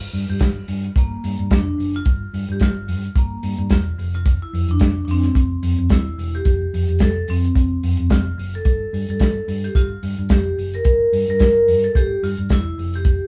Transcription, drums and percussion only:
0.14 open hi-hat
0.29 closed hi-hat
0.39 kick, snare, closed hi-hat
0.68 open hi-hat
0.84 closed hi-hat
0.96 kick, closed hi-hat
1.24 open hi-hat
1.37 closed hi-hat
1.50 kick, snare, closed hi-hat
1.80 open hi-hat
1.94 closed hi-hat
2.05 kick, closed hi-hat
2.34 open hi-hat
2.49 closed hi-hat
2.60 kick, snare, closed hi-hat
2.88 open hi-hat
3.04 closed hi-hat
3.15 kick, closed hi-hat
3.43 open hi-hat
3.57 closed hi-hat
3.70 kick, snare, closed hi-hat
3.99 open hi-hat
4.14 closed hi-hat
4.26 kick, closed hi-hat
4.54 open hi-hat
4.69 closed hi-hat
4.79 kick, snare, closed hi-hat
5.08 open hi-hat
5.23 snare, closed hi-hat
5.35 kick, closed hi-hat
5.63 open hi-hat
5.76 closed hi-hat
5.89 kick, snare, closed hi-hat
6.19 open hi-hat
6.34 closed hi-hat
6.45 kick, closed hi-hat
6.74 open hi-hat
6.88 closed hi-hat
6.99 kick, snare, closed hi-hat
7.28 open hi-hat
7.44 closed hi-hat
7.55 kick, closed hi-hat
7.83 open hi-hat
7.97 closed hi-hat
8.10 kick, snare, closed hi-hat
8.39 open hi-hat
8.54 closed hi-hat
8.65 kick, closed hi-hat
8.94 open hi-hat
9.08 closed hi-hat
9.20 kick, snare, closed hi-hat
9.48 open hi-hat
9.64 closed hi-hat
9.75 kick, closed hi-hat
10.03 open hi-hat
10.17 closed hi-hat
10.29 kick, snare, closed hi-hat
10.59 open hi-hat
10.73 closed hi-hat
10.85 kick, closed hi-hat
11.13 open hi-hat
11.28 closed hi-hat
11.39 kick, snare, closed hi-hat
11.68 open hi-hat
11.84 closed hi-hat
11.95 kick, closed hi-hat
12.23 open hi-hat
12.37 closed hi-hat
12.49 kick, snare, closed hi-hat
12.79 open hi-hat
12.94 closed hi-hat
13.05 kick, closed hi-hat

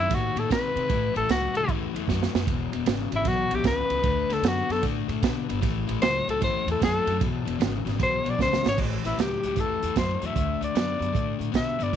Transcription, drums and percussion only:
0.11 kick, snare, ride
0.37 ride
0.51 kick, snare, ride
0.77 ride
0.89 kick, ride
1.16 ride
1.29 snare, ride
1.55 ride
1.69 kick, ride
1.96 ride
2.08 kick, snare
2.23 snare
2.35 snare
2.47 kick, ride
2.73 ride
2.86 snare, ride
3.12 ride
3.25 kick, snare, ride
3.51 ride
3.64 kick, snare, ride
3.90 ride
4.04 kick, ride
4.30 snare, ride
4.43 snare, ride
4.70 snare, ride
4.83 kick, snare, ride
5.09 ride
5.23 kick, snare, ride
5.50 ride
5.62 kick, snare, ride
5.89 ride
6.02 snare, ride
6.29 ride
6.42 kick, snare, ride
6.68 ride
6.82 kick, snare, ride
7.07 ride
7.21 kick, ride
7.48 ride
7.61 snare, ride
7.87 snare, ride
8.00 kick, snare, ride
8.26 ride
8.39 kick, snare
8.53 snare
8.66 snare
8.78 kick, crash
9.05 snare, closed hi-hat
9.19 snare, closed hi-hat
9.43 closed hi-hat
9.56 kick, closed hi-hat
9.83 closed hi-hat
9.96 kick, snare, closed hi-hat
10.22 closed hi-hat
10.36 kick, closed hi-hat
10.62 closed hi-hat
10.76 snare, closed hi-hat
11.02 closed hi-hat
11.15 kick, closed hi-hat
11.41 closed hi-hat
11.54 kick, snare, closed hi-hat
11.80 closed hi-hat

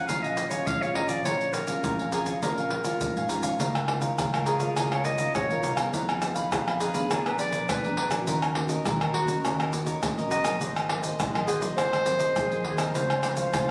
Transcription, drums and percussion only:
0.09 pandeiro, shaker, surdo
0.24 pandeiro, shaker
0.37 pandeiro, shaker, surdo
0.51 pandeiro, shaker, surdo
0.67 pandeiro, shaker, surdo
0.82 pandeiro, shaker
0.95 pandeiro
1.09 pandeiro, shaker, surdo
1.25 pandeiro, shaker, surdo
1.41 pandeiro, shaker
1.53 pandeiro, shaker
1.67 pandeiro, shaker, surdo
1.84 pandeiro, shaker, surdo
1.99 pandeiro, shaker
2.12 pandeiro, shaker
2.26 pandeiro, shaker, surdo
2.43 pandeiro, shaker, surdo
2.58 pandeiro, shaker
2.70 pandeiro, surdo
2.84 pandeiro, shaker, surdo
3.01 pandeiro, shaker, surdo
3.17 pandeiro, shaker
3.29 pandeiro, shaker
3.43 pandeiro, shaker, surdo
3.60 pandeiro, shaker, surdo
3.75 pandeiro, tamborim, shaker
3.88 pandeiro, tamborim
4.02 pandeiro, shaker, surdo
4.18 pandeiro, tamborim, shaker, surdo
4.34 pandeiro, tamborim, shaker
4.46 pandeiro, shaker
4.60 pandeiro, shaker, surdo
4.76 pandeiro, tamborim, shaker, surdo
4.92 pandeiro, tamborim, shaker
5.05 pandeiro, shaker, surdo
5.18 pandeiro, shaker, surdo
5.35 pandeiro, tamborim, shaker, surdo
5.50 pandeiro, shaker
5.63 pandeiro, shaker
5.77 pandeiro, tamborim, shaker, surdo
5.94 pandeiro, shaker, surdo
6.09 pandeiro, tamborim, shaker
6.22 pandeiro, tamborim, shaker
6.36 pandeiro, shaker, surdo
6.52 pandeiro, tamborim, shaker, surdo
6.68 pandeiro, tamborim, shaker
6.80 pandeiro, shaker
6.94 pandeiro, shaker, surdo
7.11 pandeiro, tamborim, shaker, surdo
7.26 pandeiro, tamborim, shaker
7.39 pandeiro, shaker
7.52 pandeiro, shaker, surdo
7.69 pandeiro, tamborim, shaker, surdo
7.84 pandeiro, shaker
7.97 pandeiro
8.11 pandeiro, tamborim, shaker, surdo
8.27 pandeiro, shaker, surdo
8.42 pandeiro, tamborim, shaker
8.55 pandeiro, tamborim
8.69 pandeiro, shaker, surdo
8.85 pandeiro, tamborim, shaker, surdo
9.01 pandeiro, tamborim, shaker
9.14 pandeiro
9.28 pandeiro, shaker, surdo
9.45 pandeiro, tamborim, shaker, surdo
9.60 pandeiro, tamborim, shaker
9.73 pandeiro, shaker, surdo
9.86 pandeiro, shaker, surdo
10.03 pandeiro, tamborim, shaker, surdo
10.18 pandeiro, shaker
10.31 pandeiro, shaker
10.45 pandeiro, tamborim, shaker, surdo
10.61 pandeiro, shaker, surdo
10.76 pandeiro, tamborim, shaker
10.89 pandeiro, tamborim
11.03 pandeiro, shaker, surdo
11.20 pandeiro, tamborim, shaker, surdo
11.35 pandeiro, tamborim, shaker
11.48 pandeiro, shaker
11.62 pandeiro, shaker, surdo
11.78 pandeiro, tamborim, shaker, surdo
11.93 pandeiro, tamborim, shaker
12.06 pandeiro, shaker, surdo
12.20 pandeiro, shaker, surdo
12.36 pandeiro, tamborim, shaker, surdo
12.51 pandeiro, shaker
12.64 pandeiro
12.78 pandeiro, tamborim, shaker, surdo
12.95 pandeiro, shaker, surdo
13.10 pandeiro, tamborim, shaker
13.23 pandeiro, tamborim, shaker
13.37 pandeiro, shaker, surdo
13.53 pandeiro, tamborim, shaker, surdo

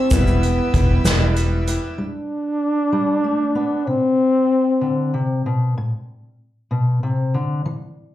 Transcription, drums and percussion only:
0.11 kick, closed hi-hat, shaker
0.27 shaker
0.43 closed hi-hat
0.74 kick, closed hi-hat
1.05 snare, closed hi-hat, shaker
1.36 closed hi-hat, shaker
1.67 closed hi-hat, shaker

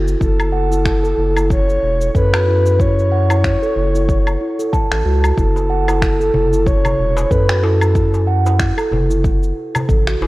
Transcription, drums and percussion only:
0.08 cabasa
0.21 kick, cabasa
0.40 cabasa, low woodblock
0.72 cabasa
0.86 finger snap, kick, cabasa
1.05 cabasa
1.37 cabasa, low woodblock
1.50 kick, cabasa
1.69 cabasa
2.01 cabasa
2.15 kick, cabasa
2.34 finger snap, cabasa, low woodblock
2.66 cabasa
2.79 kick, cabasa
2.99 cabasa
3.30 cabasa, low woodblock
3.44 finger snap, kick, cabasa
3.63 cabasa
3.95 cabasa
4.08 kick, cabasa
4.27 cabasa, low woodblock
4.60 cabasa
4.73 kick, cabasa
4.91 finger snap, cabasa
5.24 cabasa, low woodblock
5.37 kick, cabasa
5.56 darbuka ka, cabasa
5.88 darbuka tek, cabasa, low woodblock
6.02 finger snap, kick, cabasa
6.21 cabasa
6.34 darbuka dum
6.53 cabasa
6.66 kick, cabasa
6.85 darbuka dum, cabasa, low woodblock
7.17 darbuka tek, cabasa
7.31 kick, cabasa
7.49 finger snap, cabasa
7.64 darbuka ka, darbuka tek
7.82 cabasa, low woodblock
7.95 kick, cabasa
8.14 darbuka ka, cabasa
8.46 darbuka tek, cabasa
8.60 finger snap, kick, cabasa
8.78 cabasa, low woodblock
8.92 darbuka tek, darbuka dum
9.11 cabasa
9.24 kick, cabasa
9.43 cabasa
9.75 darbuka ka, darbuka dum, cabasa, low woodblock
9.89 kick, cabasa
10.07 finger snap, cabasa
10.22 darbuka tek

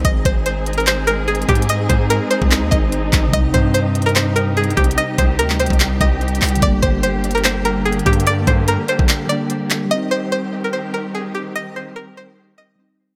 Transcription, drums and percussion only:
0.05 kick, closed hi-hat
0.25 kick, closed hi-hat
0.46 closed hi-hat
0.66 closed hi-hat
0.73 closed hi-hat
0.80 closed hi-hat
0.87 clap, closed hi-hat
1.08 closed hi-hat
1.28 closed hi-hat
1.35 closed hi-hat
1.42 closed hi-hat
1.49 kick, closed hi-hat
1.55 closed hi-hat
1.62 closed hi-hat
1.69 closed hi-hat
1.90 kick, closed hi-hat
2.10 closed hi-hat
2.31 closed hi-hat
2.42 kick
2.51 clap, closed hi-hat
2.72 kick, closed hi-hat
2.92 closed hi-hat
3.13 kick, clap, closed hi-hat
3.33 kick, closed hi-hat
3.54 kick, closed hi-hat
3.75 closed hi-hat
3.95 closed hi-hat
4.02 closed hi-hat
4.09 closed hi-hat
4.16 clap, closed hi-hat
4.36 closed hi-hat
4.57 closed hi-hat
4.64 closed hi-hat
4.70 closed hi-hat
4.77 kick, closed hi-hat
4.84 closed hi-hat
4.91 closed hi-hat
4.98 closed hi-hat
5.18 kick, closed hi-hat
5.39 closed hi-hat
5.50 clap
5.60 closed hi-hat
5.66 closed hi-hat
5.70 kick, closed hi-hat
5.80 clap, closed hi-hat
6.01 kick, closed hi-hat
6.21 closed hi-hat
6.28 closed hi-hat
6.35 closed hi-hat
6.42 clap, closed hi-hat, open hi-hat
6.49 closed hi-hat
6.55 closed hi-hat
6.62 kick, closed hi-hat
6.83 kick, closed hi-hat
7.03 closed hi-hat
7.24 closed hi-hat
7.31 closed hi-hat
7.38 closed hi-hat
7.44 clap, closed hi-hat
7.65 closed hi-hat
7.86 closed hi-hat
7.92 closed hi-hat
7.99 closed hi-hat
8.06 kick, closed hi-hat
8.13 closed hi-hat
8.20 closed hi-hat
8.27 closed hi-hat
8.47 kick, closed hi-hat
8.68 closed hi-hat
8.88 closed hi-hat
8.99 kick
9.09 clap, closed hi-hat
9.29 closed hi-hat
9.50 closed hi-hat
9.70 clap, closed hi-hat

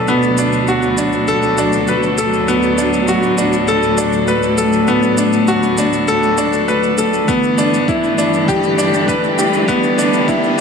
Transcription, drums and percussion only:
0.08 shaker
0.23 shaker
0.38 shaker
0.53 shaker
0.68 shaker
0.82 shaker
0.98 shaker
1.13 shaker
1.28 shaker
1.43 shaker
1.58 shaker
1.73 shaker
1.88 shaker
2.03 shaker
2.18 shaker
2.33 shaker
2.48 shaker
2.63 shaker
2.78 shaker
2.93 shaker
3.08 shaker
3.23 shaker
3.38 shaker
3.53 shaker
3.68 shaker
3.83 shaker
3.98 shaker
4.13 shaker
4.28 shaker
4.43 shaker
4.58 shaker
4.73 shaker
4.87 shaker
5.03 shaker
5.17 shaker
5.33 shaker
5.48 shaker
5.63 shaker
5.78 shaker
5.93 shaker
6.08 shaker
6.23 shaker
6.38 shaker
6.53 shaker
6.68 shaker
6.83 shaker
6.98 shaker
7.13 shaker
7.28 kick, shaker
7.43 shaker
7.58 shaker
7.74 shaker
7.88 kick, shaker
8.04 shaker
8.18 shaker
8.34 shaker
8.48 kick, shaker
8.63 shaker
8.79 shaker
8.94 shaker
9.08 kick, shaker
9.24 shaker
9.39 shaker
9.53 shaker
9.68 kick, shaker
9.83 shaker
9.99 shaker
10.13 shaker
10.28 kick, shaker
10.44 shaker

